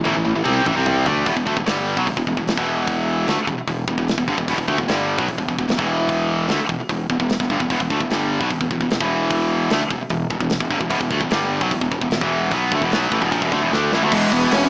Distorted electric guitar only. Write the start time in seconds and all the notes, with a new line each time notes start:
0.04 A2 E3
0.16 A2 E3
0.25 A2 E3
0.36 A2 E3
0.44 C3 G3 C4
0.65 A2 E3
0.76 C3 G3 C4
1.06 D3 A3 D4
1.26 E2 B2
1.36 E2 B2
1.46 D3 A3
1.57 E2 B2
1.66 G2 D3 G3
1.97 B2 F#3
2.07 E2 B2
2.17 E2 B2
2.28 E2 B2
2.37 E2 B2
2.48 E2 B2
2.57 E2 B2 E3
3.28 D3 A3
3.38 muted distorted electric guitar stroke
3.48 E2 B2
3.58 muted distorted electric guitar stroke
3.68 E2 B2
3.88 E2 B2
3.99 E2 B2
4.18 E2 B2
4.29 G2 D3
4.39 E2 B2
4.49 E2 B2
4.59 E2 B2
4.68 D3 A3
4.78 E2 B2
4.88 G2 D3 G3
5.19 B2 F#3
5.28 E2 B2
5.38 E2 B2
5.49 E2 B2
5.58 E2 B2
5.68 E2 B2
5.78 E2 B2 E3
6.49 D3 A3
6.60 muted distorted electric guitar stroke
6.70 E2 B2
6.80 muted distorted electric guitar stroke
6.90 E2 B2
7.10 E2 B2
7.20 E2 B2
7.41 E2 B2
7.51 G2 D3
7.62 E2 B2
7.71 E2 B2
7.81 E2 B2
7.91 D3 A3
8.01 E2 B2
8.11 G2 D3 G3
8.40 B2 F#3
8.50 E2 B2
8.61 E2 B2
8.71 E2 B2
8.82 E2 B2
8.91 E2 B2
9.01 E2 B2 E3
9.71 D3 A3
9.81 muted distorted electric guitar stroke
9.91 E2 B2
10.01 muted distorted electric guitar stroke
10.11 E2 B2
10.30 E2 B2
10.41 E2 B2
10.60 E2 B2
10.71 G2 D3
10.80 E2 B2
10.90 E2 B2
11.01 E2 B2
11.11 D3 A3
11.22 E2 B2
11.31 G2 D3 G3
11.62 B2 F#3
11.72 E2 B2
11.81 E2 B2
11.92 E2 B2
12.02 E2 B2
12.12 E2 B2
12.22 E2 B2 E3
12.52 B2 F#3 B3
12.71 D3 A3
12.81 E2 B2
12.91 B2 F#3 B3
13.12 A2 E3
13.21 E2 B2
13.31 A#2 F3
13.42 E2 B2
13.53 D3 A3
13.62 E2 B2
13.72 D3 A3 D4
13.93 A2 E3
14.03 D3 A3
14.12 E2 B2 E3